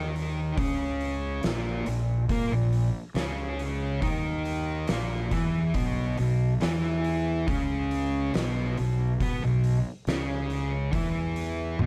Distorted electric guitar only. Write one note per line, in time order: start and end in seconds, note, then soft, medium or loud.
0.00 0.57 D#3 medium
0.00 0.58 D#4 medium
0.58 1.44 C#3 medium
0.58 1.44 C#4 loud
1.44 1.86 A#2 loud
1.44 1.87 A#3 loud
1.87 2.23 A#2 medium
2.31 2.52 A#3 medium
2.31 2.52 A#4 loud
2.52 2.87 A#2 medium
3.15 4.01 C#3 medium
3.15 4.02 C#4 medium
4.02 4.88 D#3 medium
4.02 4.88 D#4 loud
4.88 5.31 A#2 loud
4.88 5.31 A#3 loud
5.32 5.74 E3 medium
5.32 5.75 E4 medium
5.74 6.17 B2 loud
5.74 6.17 B3 loud
6.18 6.53 B2 medium
6.61 7.46 E3 medium
6.61 7.47 E4 loud
7.48 8.33 C#3 medium
7.48 8.34 C#4 loud
8.34 8.76 B2 loud
8.34 8.77 B3 loud
8.78 9.13 B2 medium
9.22 9.42 B3 loud
9.22 9.42 B4 loud
9.44 9.78 B2 medium
10.08 10.94 C#3 medium
10.08 10.95 C#4 loud
10.94 11.79 E3 medium
10.94 11.79 E4 loud
11.81 11.86 B2 loud
11.81 11.86 B3 loud